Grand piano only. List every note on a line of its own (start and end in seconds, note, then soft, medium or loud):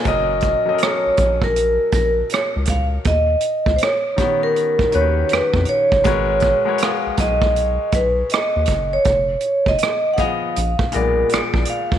0.00 0.28 D5 soft
0.00 0.27 G#5 soft
0.04 0.51 F#3 medium
0.04 0.52 C#4 medium
0.04 0.53 A#4 medium
0.04 0.53 D#5 medium
0.66 1.84 F#3 medium
0.66 1.84 C#4 medium
0.66 0.72 A4 soft
0.66 1.85 D#5 medium
0.74 1.88 A#4 medium
4.16 4.81 D#3 medium
4.16 4.83 B3 medium
4.16 4.81 C#4 soft
4.16 4.82 G4 soft
4.91 5.86 D#3 medium
4.91 5.86 C#4 medium
4.91 5.02 F#4 soft
4.91 5.88 B4 medium
5.00 5.90 G4 medium
6.04 6.51 G#3 medium
6.04 6.52 F#4 medium
6.04 6.52 A#4 medium
6.04 6.53 B4 medium
6.04 6.53 C#5 medium
6.65 7.84 G#3 medium
6.65 7.84 F#4 medium
6.65 7.85 A#4 medium
6.65 7.85 B4 medium
6.65 7.85 C#5 medium
10.16 10.54 F3 medium
10.16 10.55 B3 medium
10.16 10.56 G#4 medium
10.16 10.56 D#5 medium
10.92 11.86 A#2 medium
10.92 11.86 G#3 soft
10.92 11.87 B3 medium
10.92 11.88 D5 medium